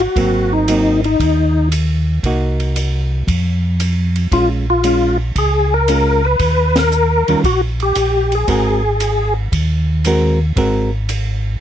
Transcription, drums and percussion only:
0.16 kick soft
0.16 ride medium
0.68 hi-hat pedal medium
0.68 ride medium
1.04 ride soft
1.20 kick soft
1.20 ride medium
1.72 hi-hat pedal soft
1.72 ride medium
2.23 kick soft
2.23 ride medium
2.60 ride soft
2.76 hi-hat pedal soft
2.76 ride medium
3.28 kick soft
3.28 ride medium
3.80 hi-hat pedal medium
3.80 ride medium
4.16 ride soft
4.32 kick soft
4.32 ride medium
4.84 hi-hat pedal medium
4.84 ride medium
5.36 kick soft
5.36 ride medium
5.88 hi-hat pedal medium
5.88 ride medium
6.39 kick soft
6.39 ride medium
6.76 snare medium
6.76 ride medium
6.92 hi-hat pedal medium
7.28 ride soft
7.44 kick soft
7.44 ride medium
7.80 ride soft
7.95 hi-hat pedal medium
7.95 ride medium
8.32 ride soft
8.48 kick soft
8.48 ride medium
9.00 hi-hat pedal medium
9.00 ride medium
9.52 kick soft
9.52 ride medium
10.05 hi-hat pedal medium
10.05 ride medium
10.57 kick soft
10.57 ride medium
11.09 hi-hat pedal medium
11.09 ride medium

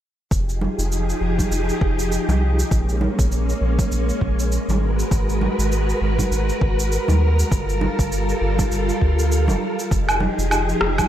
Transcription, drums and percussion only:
0.31 kick loud
0.31 cabasa soft
0.49 cabasa soft
0.61 high conga medium
0.79 cabasa medium
0.92 cabasa soft
1.09 cabasa soft
1.39 kick soft
1.39 high conga medium
1.39 cabasa medium
1.52 cabasa soft
1.69 cabasa soft
1.81 kick loud
1.99 cabasa medium
2.12 cabasa soft
2.29 high conga medium
2.29 cabasa soft
2.59 cabasa medium
2.71 kick loud
2.71 cabasa medium
2.89 cabasa soft
3.01 high conga medium
3.19 kick loud
3.19 cabasa medium
3.32 cabasa medium
3.49 cabasa soft
3.79 kick medium
3.79 high conga medium
3.79 cabasa medium
3.92 cabasa medium
4.09 cabasa soft
4.21 kick medium
4.39 cabasa medium
4.52 cabasa medium
4.69 high conga medium
4.69 cabasa soft
4.99 cabasa medium
5.11 kick loud
5.11 cabasa medium
5.29 cabasa soft
5.41 high conga medium
5.59 cabasa medium
5.72 cabasa medium
5.89 cabasa soft
6.19 kick soft
6.19 high conga medium
6.19 cabasa medium
6.32 cabasa medium
6.49 cabasa soft
6.61 kick loud
6.79 cabasa medium
6.92 cabasa medium
7.08 high conga medium
7.08 cabasa soft
7.39 cabasa medium
7.51 kick loud
7.51 cabasa soft
7.69 cabasa soft
7.81 high conga medium
7.99 kick loud
7.99 cabasa medium
8.12 cabasa medium
8.29 cabasa soft
8.58 kick medium
8.58 high conga medium
8.58 cabasa medium
8.72 cabasa medium
8.89 cabasa soft
9.01 kick medium
9.19 cabasa medium
9.32 cabasa medium
9.48 high conga medium
9.48 cabasa soft
9.79 cabasa medium
9.91 kick loud
9.91 cabasa soft
10.09 cabasa soft
10.09 low woodblock medium
10.20 high conga medium
10.39 cabasa medium
10.51 cabasa soft
10.51 low woodblock medium
10.69 cabasa soft
10.81 cross-stick medium
10.98 kick soft
10.98 high conga medium
10.98 cabasa medium
10.98 low woodblock medium

